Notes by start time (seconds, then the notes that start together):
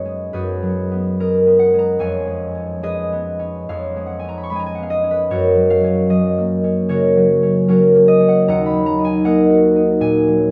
Already playing: F#2 F#3 B3 F#4 G#4 B4 C#5 D#5
0.05 G#3
0.33 F#2 F#4 G#4 B4
0.63 F#3
0.91 B3
1.20 G#3 A#4
1.47 B3
1.59 F#5
1.74 G#3
1.79 A#5
1.99 F2 C#5 F5 G#5
2.27 G#3
2.55 C#4
2.83 G#3 G#4 B4 D#5
3.12 B3
3.39 C#4
3.69 F2 B4 C#5 F5
3.96 G#3
4.06 F#5
4.19 G#5
4.24 C#4
4.29 A#5
4.38 B5
4.43 C#6
4.50 G#3 B5
4.56 G#5 A#5
4.66 G#5
4.75 B3 F#5
4.83 F5
4.90 D#5
5.04 C#4
5.11 B4
5.30 F#2 F#4 A#4 C#5
5.56 F#3
5.70 F5
5.84 C#4
6.10 F#3 D#5
6.38 A#3
6.64 C#4
6.89 C#3 F#4 A#4 C#5
7.17 F#3
7.43 C#4
7.68 F#3 C#4 F#4 A#4
7.95 A#3
8.08 D#5
8.20 C#4
8.28 F#5
8.48 D#2 D#5 F#5 A#5
8.66 B5
8.73 F#3
8.86 A#5
8.99 D#4
9.05 G#5
9.24 A#3 A#4 D#5 F#5
9.50 F#4
9.76 D#4
10.00 A#2 G#5
10.28 F#3